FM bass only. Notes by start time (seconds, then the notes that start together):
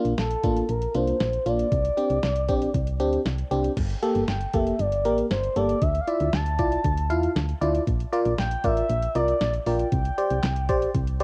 0.05 A#1
0.18 A#1
0.44 A1
0.69 A#1
0.95 C2
1.20 A#1
1.46 A#1
1.72 C2
2.10 C2
2.23 C2
2.49 A#1
2.74 C2
3.00 D2
3.26 C2
3.51 C2
3.77 G1
4.15 G1
4.28 G1
4.54 F1
4.79 G1
5.05 A1
5.31 G1
5.56 G1
5.82 D2
6.21 D2
6.33 D2
6.59 C2
6.85 D2
7.10 E2
7.36 D2
7.61 D2
7.87 A#1
8.26 A#1
8.38 A#1
8.64 A1
8.90 A#1
9.15 C2
9.41 A#1
9.67 A#1
9.92 C2
10.31 C2
10.43 C2
10.69 A#1
10.95 C2
11.20 D2